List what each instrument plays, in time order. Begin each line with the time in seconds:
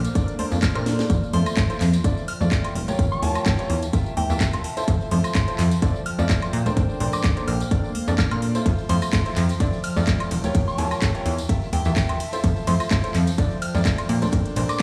Already playing: ambient pad A#3 D5 C6, synth bell F6
0.05 closed hi-hat, tambourine
0.15 grand piano D4 A4 A#4 D5, kick, closed hi-hat, tambourine
0.28 closed hi-hat, tambourine
0.39 grand piano D4 A4 A#4 C5, open hi-hat, high conga
0.52 analog synth bass F2, tambourine
0.62 synth bell F6, kick, clap, closed hi-hat, tambourine
0.75 analog synth bass A#2, grand piano D4 A4 A#4 C5, synth bell F6, closed hi-hat, tambourine, high woodblock
0.86 snare, open hi-hat
0.99 snare, closed hi-hat, tambourine
1.10 analog synth bass F2, ambient pad F3, kick, closed hi-hat, tambourine
1.23 tambourine
1.30 analog synth bass F2, grand piano E4 F4 A4 C5, ambient pad C5, synth bell C6, open hi-hat, high conga
1.46 closed hi-hat, tambourine, high woodblock
1.57 analog synth bass A2, kick, clap, closed hi-hat, tambourine
1.69 grand piano E4 F4 A4 C5, ambient pad G5, closed hi-hat, tambourine
1.81 analog synth bass F2, clap, open hi-hat
1.93 closed hi-hat, tambourine
2.04 analog synth bass D3, grand piano E4 F4 A4 D5, kick, closed hi-hat, tambourine
2.17 tambourine
2.28 synth bell F6, open hi-hat
2.41 analog synth bass F2, grand piano E4 F4 A4 D5, tambourine, high conga
2.52 kick, clap, closed hi-hat, tambourine
2.65 closed hi-hat, tambourine, high woodblock
2.75 analog synth bass E1, open hi-hat
2.88 grand piano F4 G4 A#4 C#5, closed hi-hat, tambourine, high conga
2.99 analog synth bass E2, kick, closed hi-hat, tambourine
3.12 synth bell C#6, tambourine
3.22 analog synth bass E2, grand piano F4 G4 A#4 C#5, synth bell A5, open hi-hat, high conga
3.35 tambourine, high woodblock
3.40 ambient pad E5
3.46 analog synth bass A2, kick, clap, closed hi-hat, tambourine
3.59 grand piano F4 G4 A#4 C#5, ambient pad A5, closed hi-hat, tambourine
3.70 analog synth bass E2, open hi-hat
3.83 closed hi-hat, tambourine
3.93 grand piano F4 G4 A#4 E5, kick, closed hi-hat, tambourine
4.06 tambourine
4.17 analog synth bass E2, synth bell G5, open hi-hat, high conga
4.30 analog synth bass E2, grand piano F4 G4 A#4 E5, tambourine
4.40 kick, clap, closed hi-hat, tambourine
4.53 analog synth bass E1, closed hi-hat, tambourine, high woodblock
4.64 ambient pad F3, open hi-hat
4.77 grand piano E4 F4 A4 C5, closed hi-hat, tambourine
4.88 analog synth bass F2, kick, closed hi-hat, tambourine
4.95 ambient pad C5
5.01 tambourine
5.11 analog synth bass F2, grand piano E4 F4 A4 C5, synth bell C6, open hi-hat, high conga
5.24 tambourine, high woodblock
5.35 analog synth bass A2, kick, clap, closed hi-hat, tambourine
5.39 ambient pad G5
5.48 grand piano E4 F4 A4 C5, closed hi-hat, tambourine
5.59 analog synth bass F2, clap, open hi-hat
5.71 closed hi-hat, tambourine
5.82 analog synth bass D3, grand piano E4 F4 A4 D5, kick, closed hi-hat, tambourine
5.96 tambourine
6.06 synth bell F6, open hi-hat
6.18 analog synth bass F2, grand piano E4 F4 A4 D5, tambourine, high conga
6.29 kick, clap, closed hi-hat, tambourine
6.42 closed hi-hat, tambourine, high woodblock
6.53 analog synth bass A#2, ambient pad A#3, open hi-hat
6.66 grand piano D4 A4 A#4 C5, closed hi-hat, tambourine, high conga
6.77 analog synth bass A#1, kick, closed hi-hat, tambourine
6.89 tambourine
7.00 analog synth bass A#1, grand piano D4 A4 A#4 C5, open hi-hat, high conga
7.13 synth bell D6, closed hi-hat, tambourine, high woodblock
7.24 analog synth bass D2, kick, clap, closed hi-hat
7.37 grand piano D4 A4 A#4 C5, closed hi-hat, tambourine
7.48 analog synth bass A#1, ambient pad C6, synth bell F6, open hi-hat
7.60 closed hi-hat, tambourine
7.71 grand piano D4 A4 A#4 D5, kick, closed hi-hat, tambourine
7.84 tambourine
7.95 open hi-hat, high conga
8.08 analog synth bass F2, grand piano D4 A4 A#4 D5, tambourine
8.18 synth bell F6, kick, clap, closed hi-hat, tambourine
8.31 analog synth bass A#2, synth bell F6, closed hi-hat, tambourine, high woodblock
8.42 open hi-hat
8.55 grand piano E4 F4 A4 C5, closed hi-hat, tambourine
8.66 analog synth bass F2, ambient pad F3, kick, closed hi-hat, ride, tambourine
8.78 tambourine
8.89 analog synth bass F2, grand piano E4 F4 A4 C5, ambient pad C5, synth bell C6, open hi-hat, ride, high conga
9.02 closed hi-hat, tambourine, high woodblock
9.09 analog synth bass A2, ambient pad G5, kick, clap, closed hi-hat, ride, tambourine
9.26 grand piano E4 F4 A4 C5, closed hi-hat, tambourine
9.36 analog synth bass F2, clap, open hi-hat, ride
9.49 closed hi-hat, tambourine
9.60 analog synth bass D3, grand piano E4 F4 A4 D5, kick, closed hi-hat, ride, tambourine
9.73 tambourine
9.84 synth bell F6, open hi-hat, ride
9.96 analog synth bass F2, grand piano E4 F4 A4 D5, tambourine, high conga
10.07 kick, clap, closed hi-hat, ride, tambourine
10.20 closed hi-hat, tambourine, high woodblock
10.31 analog synth bass E1, open hi-hat, ride
10.44 grand piano F4 G4 A#4 C#5, closed hi-hat, tambourine, high conga
10.55 analog synth bass E2, kick, closed hi-hat, ride, tambourine
10.68 synth bell C#6, tambourine
10.78 analog synth bass E2, grand piano F4 G4 A#4 C#5, synth bell A5, open hi-hat, ride, high conga
10.91 closed hi-hat, tambourine, high woodblock
10.97 ambient pad E5
11.02 analog synth bass A2, kick, clap, closed hi-hat, ride, tambourine
11.15 grand piano F4 G4 A#4 C#5, ambient pad A5, closed hi-hat, tambourine
11.26 analog synth bass E2, open hi-hat, ride
11.38 closed hi-hat, tambourine
11.49 grand piano F4 G4 A#4 E5, kick, closed hi-hat, ride
11.62 tambourine
11.73 analog synth bass E2, synth bell G5, open hi-hat, ride, high conga
11.85 analog synth bass E2, grand piano F4 G4 A#4 E5, tambourine
11.96 kick, clap, closed hi-hat, ride, tambourine
12.09 analog synth bass E1, closed hi-hat, tambourine, high woodblock
12.20 ambient pad F3, open hi-hat, ride
12.33 grand piano E4 F4 A4 C5, closed hi-hat, tambourine
12.42 analog synth bass F2, ambient pad C5, kick, closed hi-hat, ride, tambourine
12.56 tambourine
12.67 analog synth bass F2, grand piano E4 F4 A4 C5, synth bell C6, open hi-hat, ride, high conga
12.80 closed hi-hat, tambourine, high woodblock
12.91 analog synth bass A2, kick, clap, closed hi-hat, ride, tambourine
13.04 grand piano E4 F4 A4 C5, ambient pad G5, closed hi-hat, tambourine
13.15 analog synth bass F2, clap, open hi-hat, ride
13.27 closed hi-hat, tambourine
13.38 analog synth bass D3, grand piano E4 F4 A4 D5, kick, closed hi-hat, ride, tambourine
13.51 tambourine
13.62 synth bell F6, open hi-hat, ride
13.74 analog synth bass F2, grand piano E4 F4 A4 D5, tambourine, high conga
13.85 kick, clap, closed hi-hat, ride, tambourine
13.98 closed hi-hat, tambourine, high woodblock
14.09 analog synth bass A#2, ambient pad A#3, open hi-hat, ride
14.22 grand piano D4 A4 A#4 C5, closed hi-hat, tambourine, high conga
14.32 analog synth bass A#1, kick, closed hi-hat, ride, tambourine
14.46 closed hi-hat, tambourine
14.56 analog synth bass A#1, grand piano D4 A4 A#4 C5, open hi-hat, ride, high conga
14.69 synth bell D6, closed hi-hat, tambourine, high woodblock